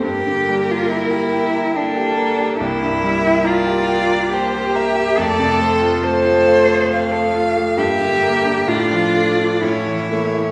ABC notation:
X:1
M:3/4
L:1/16
Q:1/4=69
K:Gdor
V:1 name="Violin"
B8 A4 | G2 e2 d4 c2 e2 | d2 c2 A4 f4 | e4 d4 ^c2 c2 |]
V:2 name="Cello"
G3 F E4 D4 | E4 F4 G4 | A4 c6 z2 | G4 F4 E4 |]
V:3 name="Grand piano"
G,, D, G, G B G g b g G B G | C,, G,, G, G B G g b g G B G | F,, C, A, F A F f a f A F A, | G,, D, B, D A,, F, A, D A,, E, A, E |]
V:4 name="Viola"
B,8 B,4 | B,8 B,4 | A,4 A,8 | B,4 D4 ^C2 B,2 |]